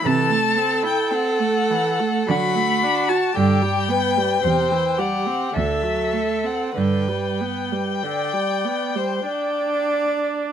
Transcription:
<<
  \new Staff \with { instrumentName = "Violin" } { \time 3/4 \key g \major \tempo 4 = 52 a''8. g''16 fis''4 b''8. a''16 | g''4. fis''8 e''8. fis''16 | g''2~ g''8 r8 | }
  \new Staff \with { instrumentName = "Violin" } { \time 3/4 \key g \major a'2 fis'4 | g'8 b'8 c''8 g'8 a'4 | b'4 d''8. c''16 d''4 | }
  \new Staff \with { instrumentName = "Viola" } { \clef bass \time 3/4 \key g \major e16 a16 c'16 e'16 c'16 a16 e16 a16 fis16 a16 d'16 fis'16 | d16 g16 b16 g16 c16 e16 g16 c'16 d16 fis16 a16 c'16 | d16 g16 b16 g16 d16 g16 b16 g16 d'4 | }
  \new Staff \with { instrumentName = "Cello" } { \clef bass \time 3/4 \key g \major c4 r4 d4 | g,4 e,4 d,4 | g,4 r2 | }
>>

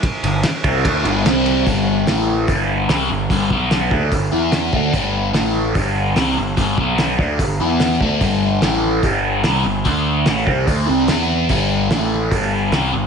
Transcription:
<<
  \new Staff \with { instrumentName = "Overdriven electric guitar" } { \clef bass \time 4/4 \key g \major \tempo 4 = 146 r8 <g, d>8 r8 <c g c'>8 <d a d'>8 <g, d g>8 <c g c'>4 | <g, d g>4 <a, e a>4 <g, d g>4 <c g c'>8 <g, d>8 | <g, d g>8 <b, fis b>4 <d a d'>8 <g, d>8 <e b e'>4 <d a d'>8 | <g, d g>4 <a, e a>4 <g, d g>4 <c g c'>8 <g, d>8 |
<g, d g>8 <b, fis b>4 <d a d'>8 <g, d>8 <e b e'>4 <d a d'>8 | <g, d g>4 <a, e a>4 <g, d g>4 <c g c'>8 <g, d>8 | <d a d'>4 <a, e a>8 <c g c'>8 <d a d'>8 <c g c'>8 <e b e'>4 | <g, d g>4 <a, e a>4 <g, d g>4 <c g c'>8 <g, d>8 | }
  \new Staff \with { instrumentName = "Picked electric bass" } { \clef bass \time 4/4 \key g \major r8 g,,8 r8 c,8 d,8 g,,8 c,4 | g,,4 a,,4 g,,4 c,8 g,,8 | g,,8 b,,4 d,8 g,,8 e,4 d,8 | g,,4 a,,4 g,,4 c,8 g,,8 |
g,,8 b,,4 d,8 g,,8 e,4 d,8 | g,,4 a,,4 g,,4 c,8 g,,8 | d,4 a,,8 c,8 d,8 c,8 e,4 | g,,4 a,,4 g,,4 c,8 g,,8 | }
  \new DrumStaff \with { instrumentName = "Drums" } \drummode { \time 4/4 <bd cymr>8 cymr8 <cymr sn>8 <bd cymr>8 <bd cymr>8 cymr8 <cymr sn>8 cymr8 | <hho bd>4 <hho sn>4 <hho bd>4 <hho sn>4 | <hho bd>8 bd8 <hho sn>8 bd8 <hho bd>4 <hho sn>8 bd8 | <hho bd>4 <hho sn>4 <hho bd>4 <hho sn>4 |
<hho bd>8 bd8 <hho sn>8 bd8 <hho bd>4 <hho sn>8 bd8 | <hho bd>4 <hho sn>4 <hho bd>4 <hho sn>4 | <hho bd>4 <hho sn>8 bd8 <hho bd>4 <hho sn>4 | <hho bd>4 <hho sn>4 <hho bd>4 <hho sn>4 | }
>>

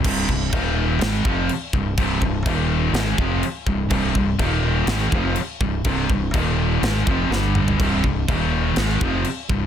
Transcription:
<<
  \new Staff \with { instrumentName = "Distorted electric guitar" } { \clef bass \time 4/4 \key c \minor \tempo 4 = 124 <c, g, c>8 <c, g,>8 <ees, bes, ees>4 <aes, ees aes>8 <f, c f>8 r8 <c, g,>8 | <c, g, c>8 <c, g,>8 <ees, bes, ees>4 <aes, ees aes>8 <f, c f>8 r8 <c, g,>8 | <c, g, c>8 <c, g,>8 <ees, bes, ees>4 <aes, ees aes>8 <f, c f>8 r8 <c, g,>8 | <c, g, c>8 <c, g,>8 <ees, bes, ees>4 <aes, ees aes>8 <f, c f>8 <g, d g>4 |
<c, g, c>8 <c, g,>8 <ees, bes, ees>4 <aes, ees aes>8 <f, c f>8 r8 <c, g,>8 | }
  \new Staff \with { instrumentName = "Distorted electric guitar" } { \clef bass \time 4/4 \key c \minor <c, g, c>8 <c, g,>8 <ees, bes, ees>4 <aes, ees aes>8 <f, c f>8 r8 <c, g,>8 | <c, g, c>8 <c, g,>8 <ees, bes, ees>4 <aes, ees aes>8 <f, c f>8 r8 <c, g,>8 | <c, g, c>8 <c, g,>8 <ees, bes, ees>4 <aes, ees aes>8 <f, c f>8 r8 <c, g,>8 | <c, g, c>8 <c, g,>8 <ees, bes, ees>4 <aes, ees aes>8 <f, c f>8 <g, d g>4 |
<c, g, c>8 <c, g,>8 <ees, bes, ees>4 <aes, ees aes>8 <f, c f>8 r8 <c, g,>8 | }
  \new Staff \with { instrumentName = "Fingered electric bass" } { \clef bass \time 4/4 \key c \minor c,,8 c,,8 ees,,4 aes,,8 f,,8 r8 c,,8 | c,,8 c,,8 ees,,4 aes,,8 f,,8 r8 c,,8 | c,,8 c,,8 ees,,4 aes,,8 f,,8 r8 c,,8 | c,,8 c,,8 ees,,4 aes,,8 f,,8 g,,4 |
c,,8 c,,8 ees,,4 aes,,8 f,,8 r8 c,,8 | }
  \new DrumStaff \with { instrumentName = "Drums" } \drummode { \time 4/4 <cymc bd>8 bd8 <cymc bd>4 <cymc sn>8 bd8 cymc8 bd8 | <cymc bd>8 bd8 <cymc bd>4 <cymc sn>8 bd8 cymc8 bd8 | <cymc bd>8 bd8 <cymc bd>4 <cymc sn>8 bd8 cymc8 bd8 | <cymc bd>8 bd8 <cymc bd>4 <cymc sn>8 bd8 sn8 toml16 tomfh16 |
<cymc bd>8 bd8 <cymc bd>4 <cymc sn>8 bd8 cymc8 bd8 | }
>>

